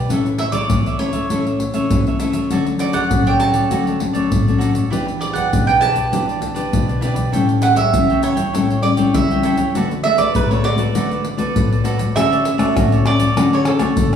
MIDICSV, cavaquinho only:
0, 0, Header, 1, 3, 480
1, 0, Start_track
1, 0, Key_signature, 2, "major"
1, 0, Tempo, 603015
1, 81, Time_signature, 4, 2, 24, 8
1, 11270, End_track
2, 0, Start_track
2, 0, Title_t, "Cavaquinho"
2, 0, Program_c, 0, 24
2, 86, Note_on_c, 0, 64, 64
2, 91, Note_on_c, 0, 69, 60
2, 97, Note_on_c, 0, 73, 75
2, 101, Note_on_c, 0, 76, 68
2, 194, Note_off_c, 0, 64, 0
2, 196, Note_off_c, 0, 69, 0
2, 200, Note_off_c, 0, 73, 0
2, 202, Note_off_c, 0, 76, 0
2, 313, Note_on_c, 0, 64, 40
2, 318, Note_on_c, 0, 69, 45
2, 324, Note_on_c, 0, 73, 51
2, 326, Note_on_c, 0, 76, 47
2, 410, Note_off_c, 0, 76, 0
2, 420, Note_off_c, 0, 73, 0
2, 420, Note_on_c, 0, 76, 61
2, 428, Note_off_c, 0, 64, 0
2, 428, Note_off_c, 0, 69, 0
2, 429, Note_on_c, 0, 73, 63
2, 437, Note_on_c, 0, 69, 46
2, 660, Note_off_c, 0, 76, 0
2, 665, Note_off_c, 0, 73, 0
2, 669, Note_off_c, 0, 69, 0
2, 692, Note_on_c, 0, 76, 53
2, 701, Note_on_c, 0, 73, 46
2, 705, Note_on_c, 0, 69, 33
2, 784, Note_off_c, 0, 69, 0
2, 790, Note_on_c, 0, 64, 44
2, 791, Note_off_c, 0, 73, 0
2, 794, Note_on_c, 0, 69, 43
2, 795, Note_off_c, 0, 76, 0
2, 800, Note_on_c, 0, 73, 46
2, 804, Note_on_c, 0, 76, 53
2, 891, Note_off_c, 0, 76, 0
2, 900, Note_off_c, 0, 73, 0
2, 901, Note_on_c, 0, 76, 50
2, 905, Note_off_c, 0, 64, 0
2, 907, Note_off_c, 0, 69, 0
2, 910, Note_on_c, 0, 73, 51
2, 918, Note_on_c, 0, 69, 43
2, 1021, Note_off_c, 0, 76, 0
2, 1025, Note_off_c, 0, 73, 0
2, 1029, Note_off_c, 0, 69, 0
2, 1041, Note_on_c, 0, 64, 55
2, 1046, Note_on_c, 0, 69, 61
2, 1051, Note_on_c, 0, 73, 65
2, 1056, Note_on_c, 0, 76, 69
2, 1151, Note_off_c, 0, 64, 0
2, 1153, Note_off_c, 0, 69, 0
2, 1156, Note_off_c, 0, 73, 0
2, 1158, Note_off_c, 0, 76, 0
2, 1171, Note_on_c, 0, 76, 43
2, 1178, Note_on_c, 0, 73, 39
2, 1185, Note_on_c, 0, 69, 34
2, 1271, Note_off_c, 0, 69, 0
2, 1272, Note_off_c, 0, 73, 0
2, 1276, Note_off_c, 0, 76, 0
2, 1385, Note_on_c, 0, 76, 63
2, 1394, Note_on_c, 0, 73, 57
2, 1397, Note_on_c, 0, 69, 58
2, 1622, Note_off_c, 0, 76, 0
2, 1627, Note_off_c, 0, 73, 0
2, 1629, Note_off_c, 0, 69, 0
2, 1652, Note_on_c, 0, 76, 44
2, 1659, Note_on_c, 0, 73, 36
2, 1664, Note_on_c, 0, 69, 37
2, 1742, Note_off_c, 0, 69, 0
2, 1745, Note_off_c, 0, 73, 0
2, 1745, Note_on_c, 0, 64, 61
2, 1749, Note_off_c, 0, 76, 0
2, 1751, Note_on_c, 0, 69, 60
2, 1755, Note_on_c, 0, 73, 68
2, 1759, Note_on_c, 0, 76, 70
2, 1848, Note_off_c, 0, 76, 0
2, 1853, Note_off_c, 0, 73, 0
2, 1857, Note_on_c, 0, 76, 44
2, 1860, Note_off_c, 0, 69, 0
2, 1862, Note_off_c, 0, 64, 0
2, 1863, Note_on_c, 0, 73, 43
2, 1869, Note_on_c, 0, 69, 32
2, 1978, Note_off_c, 0, 76, 0
2, 1981, Note_off_c, 0, 73, 0
2, 1984, Note_off_c, 0, 69, 0
2, 1996, Note_on_c, 0, 66, 56
2, 2000, Note_on_c, 0, 69, 71
2, 2008, Note_on_c, 0, 73, 70
2, 2011, Note_on_c, 0, 74, 69
2, 2108, Note_off_c, 0, 66, 0
2, 2110, Note_off_c, 0, 69, 0
2, 2114, Note_off_c, 0, 73, 0
2, 2115, Note_off_c, 0, 74, 0
2, 2220, Note_on_c, 0, 66, 40
2, 2225, Note_on_c, 0, 69, 45
2, 2231, Note_on_c, 0, 73, 46
2, 2236, Note_on_c, 0, 74, 43
2, 2327, Note_off_c, 0, 74, 0
2, 2335, Note_off_c, 0, 73, 0
2, 2337, Note_on_c, 0, 74, 72
2, 2340, Note_off_c, 0, 66, 0
2, 2342, Note_off_c, 0, 69, 0
2, 2345, Note_on_c, 0, 73, 57
2, 2351, Note_on_c, 0, 69, 51
2, 2578, Note_off_c, 0, 74, 0
2, 2582, Note_off_c, 0, 73, 0
2, 2585, Note_off_c, 0, 69, 0
2, 2597, Note_on_c, 0, 74, 47
2, 2605, Note_on_c, 0, 73, 48
2, 2612, Note_on_c, 0, 69, 37
2, 2696, Note_off_c, 0, 69, 0
2, 2701, Note_on_c, 0, 66, 40
2, 2703, Note_off_c, 0, 73, 0
2, 2705, Note_on_c, 0, 69, 43
2, 2708, Note_off_c, 0, 74, 0
2, 2713, Note_on_c, 0, 73, 51
2, 2717, Note_on_c, 0, 74, 46
2, 2801, Note_off_c, 0, 74, 0
2, 2809, Note_off_c, 0, 73, 0
2, 2811, Note_on_c, 0, 74, 59
2, 2814, Note_off_c, 0, 69, 0
2, 2819, Note_on_c, 0, 73, 54
2, 2820, Note_off_c, 0, 66, 0
2, 2823, Note_on_c, 0, 69, 50
2, 2935, Note_off_c, 0, 74, 0
2, 2939, Note_off_c, 0, 73, 0
2, 2941, Note_off_c, 0, 69, 0
2, 2952, Note_on_c, 0, 66, 68
2, 2957, Note_on_c, 0, 69, 63
2, 2960, Note_on_c, 0, 73, 70
2, 2964, Note_on_c, 0, 74, 62
2, 3065, Note_off_c, 0, 66, 0
2, 3065, Note_off_c, 0, 74, 0
2, 3068, Note_off_c, 0, 69, 0
2, 3069, Note_off_c, 0, 73, 0
2, 3074, Note_on_c, 0, 74, 40
2, 3085, Note_on_c, 0, 73, 39
2, 3092, Note_on_c, 0, 69, 34
2, 3177, Note_off_c, 0, 69, 0
2, 3179, Note_off_c, 0, 73, 0
2, 3182, Note_off_c, 0, 74, 0
2, 3291, Note_on_c, 0, 74, 68
2, 3301, Note_on_c, 0, 73, 54
2, 3305, Note_on_c, 0, 69, 49
2, 3535, Note_off_c, 0, 74, 0
2, 3540, Note_off_c, 0, 73, 0
2, 3542, Note_off_c, 0, 69, 0
2, 3555, Note_on_c, 0, 74, 43
2, 3564, Note_on_c, 0, 73, 38
2, 3570, Note_on_c, 0, 69, 37
2, 3646, Note_off_c, 0, 69, 0
2, 3648, Note_off_c, 0, 73, 0
2, 3648, Note_on_c, 0, 66, 73
2, 3653, Note_off_c, 0, 74, 0
2, 3655, Note_on_c, 0, 69, 67
2, 3657, Note_on_c, 0, 73, 64
2, 3663, Note_on_c, 0, 74, 75
2, 3747, Note_off_c, 0, 74, 0
2, 3757, Note_on_c, 0, 74, 38
2, 3758, Note_off_c, 0, 73, 0
2, 3762, Note_off_c, 0, 69, 0
2, 3768, Note_on_c, 0, 73, 38
2, 3772, Note_on_c, 0, 69, 40
2, 3773, Note_off_c, 0, 66, 0
2, 3888, Note_off_c, 0, 74, 0
2, 3893, Note_off_c, 0, 73, 0
2, 3895, Note_off_c, 0, 69, 0
2, 3903, Note_on_c, 0, 64, 69
2, 3910, Note_on_c, 0, 67, 65
2, 3913, Note_on_c, 0, 71, 72
2, 3917, Note_on_c, 0, 74, 76
2, 4021, Note_off_c, 0, 64, 0
2, 4024, Note_off_c, 0, 67, 0
2, 4026, Note_off_c, 0, 71, 0
2, 4028, Note_off_c, 0, 74, 0
2, 4132, Note_on_c, 0, 64, 44
2, 4138, Note_on_c, 0, 67, 40
2, 4144, Note_on_c, 0, 71, 49
2, 4145, Note_on_c, 0, 74, 46
2, 4233, Note_off_c, 0, 74, 0
2, 4239, Note_off_c, 0, 71, 0
2, 4243, Note_on_c, 0, 74, 62
2, 4245, Note_off_c, 0, 67, 0
2, 4249, Note_on_c, 0, 71, 57
2, 4255, Note_off_c, 0, 64, 0
2, 4255, Note_on_c, 0, 67, 54
2, 4491, Note_off_c, 0, 74, 0
2, 4494, Note_off_c, 0, 71, 0
2, 4497, Note_off_c, 0, 67, 0
2, 4515, Note_on_c, 0, 74, 50
2, 4522, Note_on_c, 0, 71, 48
2, 4529, Note_on_c, 0, 67, 38
2, 4612, Note_off_c, 0, 67, 0
2, 4613, Note_on_c, 0, 64, 47
2, 4614, Note_off_c, 0, 71, 0
2, 4620, Note_off_c, 0, 74, 0
2, 4621, Note_on_c, 0, 67, 50
2, 4624, Note_on_c, 0, 71, 46
2, 4630, Note_on_c, 0, 74, 50
2, 4717, Note_off_c, 0, 74, 0
2, 4723, Note_off_c, 0, 71, 0
2, 4726, Note_on_c, 0, 74, 54
2, 4730, Note_off_c, 0, 67, 0
2, 4733, Note_on_c, 0, 71, 58
2, 4736, Note_off_c, 0, 64, 0
2, 4740, Note_on_c, 0, 67, 48
2, 4852, Note_off_c, 0, 74, 0
2, 4856, Note_off_c, 0, 71, 0
2, 4859, Note_off_c, 0, 67, 0
2, 4866, Note_on_c, 0, 64, 58
2, 4872, Note_on_c, 0, 67, 59
2, 4876, Note_on_c, 0, 71, 62
2, 4881, Note_on_c, 0, 74, 72
2, 4982, Note_off_c, 0, 64, 0
2, 4984, Note_off_c, 0, 74, 0
2, 4985, Note_off_c, 0, 67, 0
2, 4987, Note_off_c, 0, 71, 0
2, 4994, Note_on_c, 0, 74, 48
2, 5001, Note_on_c, 0, 71, 40
2, 5007, Note_on_c, 0, 67, 36
2, 5095, Note_off_c, 0, 67, 0
2, 5095, Note_off_c, 0, 71, 0
2, 5099, Note_off_c, 0, 74, 0
2, 5210, Note_on_c, 0, 74, 66
2, 5219, Note_on_c, 0, 71, 67
2, 5225, Note_on_c, 0, 67, 58
2, 5454, Note_off_c, 0, 74, 0
2, 5459, Note_off_c, 0, 71, 0
2, 5462, Note_off_c, 0, 67, 0
2, 5476, Note_on_c, 0, 74, 40
2, 5485, Note_on_c, 0, 71, 39
2, 5493, Note_on_c, 0, 67, 39
2, 5577, Note_off_c, 0, 67, 0
2, 5579, Note_off_c, 0, 71, 0
2, 5579, Note_on_c, 0, 64, 64
2, 5583, Note_off_c, 0, 74, 0
2, 5586, Note_on_c, 0, 67, 61
2, 5589, Note_on_c, 0, 71, 72
2, 5593, Note_on_c, 0, 74, 74
2, 5679, Note_off_c, 0, 74, 0
2, 5687, Note_off_c, 0, 71, 0
2, 5689, Note_on_c, 0, 74, 45
2, 5690, Note_off_c, 0, 67, 0
2, 5696, Note_on_c, 0, 71, 39
2, 5699, Note_off_c, 0, 64, 0
2, 5700, Note_on_c, 0, 67, 39
2, 5814, Note_off_c, 0, 74, 0
2, 5818, Note_off_c, 0, 71, 0
2, 5819, Note_off_c, 0, 67, 0
2, 5826, Note_on_c, 0, 64, 65
2, 5829, Note_on_c, 0, 69, 64
2, 5835, Note_on_c, 0, 73, 68
2, 5840, Note_on_c, 0, 79, 69
2, 5942, Note_off_c, 0, 64, 0
2, 5944, Note_off_c, 0, 69, 0
2, 5947, Note_off_c, 0, 73, 0
2, 5950, Note_off_c, 0, 79, 0
2, 6062, Note_on_c, 0, 64, 47
2, 6064, Note_on_c, 0, 69, 41
2, 6071, Note_on_c, 0, 73, 50
2, 6076, Note_on_c, 0, 79, 51
2, 6161, Note_off_c, 0, 79, 0
2, 6168, Note_off_c, 0, 73, 0
2, 6170, Note_on_c, 0, 79, 64
2, 6176, Note_off_c, 0, 69, 0
2, 6178, Note_on_c, 0, 73, 61
2, 6180, Note_off_c, 0, 64, 0
2, 6186, Note_on_c, 0, 69, 54
2, 6415, Note_off_c, 0, 79, 0
2, 6419, Note_off_c, 0, 73, 0
2, 6423, Note_off_c, 0, 69, 0
2, 6445, Note_on_c, 0, 79, 50
2, 6451, Note_on_c, 0, 73, 43
2, 6457, Note_on_c, 0, 69, 41
2, 6542, Note_off_c, 0, 69, 0
2, 6545, Note_off_c, 0, 73, 0
2, 6547, Note_on_c, 0, 64, 47
2, 6550, Note_off_c, 0, 79, 0
2, 6552, Note_on_c, 0, 69, 43
2, 6555, Note_on_c, 0, 73, 45
2, 6560, Note_on_c, 0, 79, 50
2, 6640, Note_off_c, 0, 79, 0
2, 6648, Note_off_c, 0, 73, 0
2, 6650, Note_on_c, 0, 79, 59
2, 6657, Note_off_c, 0, 69, 0
2, 6657, Note_on_c, 0, 73, 60
2, 6663, Note_off_c, 0, 64, 0
2, 6667, Note_on_c, 0, 69, 45
2, 6775, Note_off_c, 0, 79, 0
2, 6779, Note_off_c, 0, 73, 0
2, 6783, Note_off_c, 0, 69, 0
2, 6792, Note_on_c, 0, 64, 64
2, 6798, Note_on_c, 0, 69, 64
2, 6802, Note_on_c, 0, 73, 64
2, 6806, Note_on_c, 0, 79, 61
2, 6906, Note_off_c, 0, 64, 0
2, 6909, Note_off_c, 0, 69, 0
2, 6911, Note_off_c, 0, 73, 0
2, 6913, Note_off_c, 0, 79, 0
2, 6928, Note_on_c, 0, 79, 42
2, 6935, Note_on_c, 0, 73, 39
2, 6939, Note_on_c, 0, 69, 37
2, 7023, Note_off_c, 0, 69, 0
2, 7025, Note_off_c, 0, 73, 0
2, 7026, Note_off_c, 0, 79, 0
2, 7140, Note_on_c, 0, 79, 64
2, 7148, Note_on_c, 0, 73, 58
2, 7156, Note_on_c, 0, 69, 58
2, 7380, Note_off_c, 0, 79, 0
2, 7384, Note_off_c, 0, 73, 0
2, 7388, Note_off_c, 0, 69, 0
2, 7412, Note_on_c, 0, 79, 53
2, 7421, Note_on_c, 0, 73, 42
2, 7426, Note_on_c, 0, 69, 39
2, 7506, Note_off_c, 0, 69, 0
2, 7509, Note_off_c, 0, 73, 0
2, 7510, Note_on_c, 0, 64, 67
2, 7516, Note_off_c, 0, 79, 0
2, 7516, Note_on_c, 0, 69, 72
2, 7519, Note_on_c, 0, 73, 68
2, 7525, Note_on_c, 0, 79, 70
2, 7617, Note_off_c, 0, 79, 0
2, 7622, Note_off_c, 0, 73, 0
2, 7625, Note_off_c, 0, 64, 0
2, 7627, Note_on_c, 0, 79, 42
2, 7628, Note_off_c, 0, 69, 0
2, 7631, Note_on_c, 0, 73, 43
2, 7640, Note_on_c, 0, 69, 35
2, 7744, Note_off_c, 0, 79, 0
2, 7746, Note_off_c, 0, 73, 0
2, 7750, Note_off_c, 0, 69, 0
2, 7764, Note_on_c, 0, 66, 67
2, 7772, Note_on_c, 0, 69, 72
2, 7777, Note_on_c, 0, 71, 66
2, 7781, Note_on_c, 0, 74, 73
2, 7872, Note_off_c, 0, 66, 0
2, 7877, Note_off_c, 0, 69, 0
2, 7879, Note_off_c, 0, 71, 0
2, 7881, Note_off_c, 0, 74, 0
2, 7993, Note_on_c, 0, 66, 50
2, 7998, Note_on_c, 0, 69, 50
2, 8000, Note_on_c, 0, 71, 45
2, 8007, Note_on_c, 0, 74, 51
2, 8092, Note_off_c, 0, 74, 0
2, 8101, Note_on_c, 0, 74, 72
2, 8102, Note_off_c, 0, 71, 0
2, 8107, Note_off_c, 0, 66, 0
2, 8107, Note_off_c, 0, 69, 0
2, 8112, Note_on_c, 0, 71, 59
2, 8116, Note_on_c, 0, 69, 55
2, 8341, Note_off_c, 0, 74, 0
2, 8347, Note_off_c, 0, 71, 0
2, 8349, Note_off_c, 0, 69, 0
2, 8373, Note_on_c, 0, 74, 51
2, 8379, Note_on_c, 0, 71, 44
2, 8384, Note_on_c, 0, 69, 39
2, 8467, Note_off_c, 0, 69, 0
2, 8470, Note_off_c, 0, 71, 0
2, 8471, Note_on_c, 0, 66, 48
2, 8476, Note_on_c, 0, 69, 46
2, 8477, Note_off_c, 0, 74, 0
2, 8480, Note_on_c, 0, 71, 44
2, 8488, Note_on_c, 0, 74, 48
2, 8574, Note_off_c, 0, 74, 0
2, 8584, Note_off_c, 0, 71, 0
2, 8584, Note_on_c, 0, 74, 55
2, 8586, Note_off_c, 0, 66, 0
2, 8589, Note_off_c, 0, 69, 0
2, 8593, Note_on_c, 0, 71, 48
2, 8597, Note_on_c, 0, 69, 45
2, 8703, Note_off_c, 0, 74, 0
2, 8708, Note_off_c, 0, 71, 0
2, 8710, Note_off_c, 0, 69, 0
2, 8718, Note_on_c, 0, 66, 63
2, 8726, Note_on_c, 0, 69, 58
2, 8730, Note_on_c, 0, 71, 66
2, 8736, Note_on_c, 0, 74, 68
2, 8830, Note_off_c, 0, 66, 0
2, 8834, Note_off_c, 0, 69, 0
2, 8836, Note_off_c, 0, 71, 0
2, 8837, Note_off_c, 0, 74, 0
2, 8846, Note_on_c, 0, 74, 45
2, 8857, Note_on_c, 0, 71, 42
2, 8863, Note_on_c, 0, 69, 35
2, 8948, Note_off_c, 0, 69, 0
2, 8950, Note_off_c, 0, 71, 0
2, 8951, Note_off_c, 0, 74, 0
2, 9057, Note_on_c, 0, 74, 69
2, 9064, Note_on_c, 0, 71, 68
2, 9071, Note_on_c, 0, 69, 56
2, 9300, Note_off_c, 0, 74, 0
2, 9303, Note_off_c, 0, 71, 0
2, 9307, Note_off_c, 0, 69, 0
2, 9324, Note_on_c, 0, 74, 42
2, 9331, Note_on_c, 0, 71, 40
2, 9338, Note_on_c, 0, 69, 36
2, 9421, Note_off_c, 0, 69, 0
2, 9425, Note_on_c, 0, 66, 66
2, 9426, Note_off_c, 0, 71, 0
2, 9430, Note_off_c, 0, 74, 0
2, 9431, Note_on_c, 0, 69, 66
2, 9436, Note_on_c, 0, 71, 72
2, 9440, Note_on_c, 0, 74, 76
2, 9524, Note_off_c, 0, 74, 0
2, 9531, Note_off_c, 0, 71, 0
2, 9534, Note_on_c, 0, 74, 42
2, 9538, Note_off_c, 0, 69, 0
2, 9541, Note_on_c, 0, 71, 39
2, 9544, Note_off_c, 0, 66, 0
2, 9547, Note_on_c, 0, 69, 34
2, 9658, Note_off_c, 0, 74, 0
2, 9662, Note_off_c, 0, 71, 0
2, 9665, Note_off_c, 0, 69, 0
2, 9672, Note_on_c, 0, 66, 41
2, 9678, Note_on_c, 0, 69, 57
2, 9684, Note_on_c, 0, 73, 53
2, 9688, Note_on_c, 0, 74, 52
2, 9788, Note_off_c, 0, 66, 0
2, 9791, Note_off_c, 0, 69, 0
2, 9792, Note_off_c, 0, 74, 0
2, 9794, Note_off_c, 0, 73, 0
2, 9801, Note_on_c, 0, 74, 71
2, 9809, Note_on_c, 0, 73, 59
2, 9817, Note_on_c, 0, 69, 60
2, 9902, Note_off_c, 0, 69, 0
2, 9902, Note_off_c, 0, 73, 0
2, 9906, Note_off_c, 0, 74, 0
2, 10014, Note_on_c, 0, 74, 77
2, 10024, Note_on_c, 0, 73, 64
2, 10031, Note_on_c, 0, 69, 56
2, 10139, Note_off_c, 0, 74, 0
2, 10144, Note_off_c, 0, 73, 0
2, 10147, Note_off_c, 0, 69, 0
2, 10153, Note_on_c, 0, 66, 49
2, 10158, Note_on_c, 0, 69, 47
2, 10163, Note_on_c, 0, 73, 49
2, 10167, Note_on_c, 0, 74, 46
2, 10268, Note_off_c, 0, 66, 0
2, 10271, Note_off_c, 0, 69, 0
2, 10273, Note_off_c, 0, 73, 0
2, 10275, Note_off_c, 0, 74, 0
2, 10284, Note_on_c, 0, 74, 62
2, 10292, Note_on_c, 0, 73, 63
2, 10300, Note_on_c, 0, 69, 52
2, 10486, Note_off_c, 0, 74, 0
2, 10491, Note_off_c, 0, 73, 0
2, 10496, Note_on_c, 0, 74, 57
2, 10501, Note_on_c, 0, 73, 55
2, 10502, Note_off_c, 0, 69, 0
2, 10511, Note_on_c, 0, 69, 50
2, 10620, Note_off_c, 0, 74, 0
2, 10622, Note_off_c, 0, 73, 0
2, 10628, Note_off_c, 0, 69, 0
2, 10636, Note_on_c, 0, 66, 48
2, 10643, Note_on_c, 0, 69, 47
2, 10647, Note_on_c, 0, 73, 48
2, 10652, Note_on_c, 0, 74, 49
2, 10749, Note_off_c, 0, 74, 0
2, 10750, Note_off_c, 0, 66, 0
2, 10753, Note_off_c, 0, 69, 0
2, 10756, Note_off_c, 0, 73, 0
2, 10758, Note_on_c, 0, 74, 59
2, 10767, Note_on_c, 0, 73, 58
2, 10772, Note_on_c, 0, 69, 59
2, 10856, Note_off_c, 0, 69, 0
2, 10860, Note_off_c, 0, 73, 0
2, 10861, Note_off_c, 0, 74, 0
2, 10974, Note_on_c, 0, 74, 70
2, 10983, Note_on_c, 0, 73, 61
2, 10990, Note_on_c, 0, 69, 57
2, 11219, Note_off_c, 0, 74, 0
2, 11224, Note_off_c, 0, 73, 0
2, 11227, Note_off_c, 0, 69, 0
2, 11244, Note_on_c, 0, 74, 66
2, 11270, Note_off_c, 0, 74, 0
2, 11270, End_track
3, 0, Start_track
3, 0, Title_t, "Muted cavaquinho strokes"
3, 216, Note_on_c, 9, 29, 37
3, 295, Note_off_c, 9, 29, 0
3, 1276, Note_on_c, 9, 29, 32
3, 1355, Note_off_c, 9, 29, 0
3, 2122, Note_on_c, 9, 29, 34
3, 2202, Note_off_c, 9, 29, 0
3, 3183, Note_on_c, 9, 29, 27
3, 3263, Note_off_c, 9, 29, 0
3, 4031, Note_on_c, 9, 29, 35
3, 4110, Note_off_c, 9, 29, 0
3, 5100, Note_on_c, 9, 29, 32
3, 5180, Note_off_c, 9, 29, 0
3, 5957, Note_on_c, 9, 29, 33
3, 6036, Note_off_c, 9, 29, 0
3, 7029, Note_on_c, 9, 29, 35
3, 7109, Note_off_c, 9, 29, 0
3, 7888, Note_on_c, 9, 29, 32
3, 7968, Note_off_c, 9, 29, 0
3, 8956, Note_on_c, 9, 29, 35
3, 9035, Note_off_c, 9, 29, 0
3, 9907, Note_on_c, 9, 29, 36
3, 9987, Note_off_c, 9, 29, 0
3, 10863, Note_on_c, 9, 29, 30
3, 10942, Note_off_c, 9, 29, 0
3, 11270, End_track
0, 0, End_of_file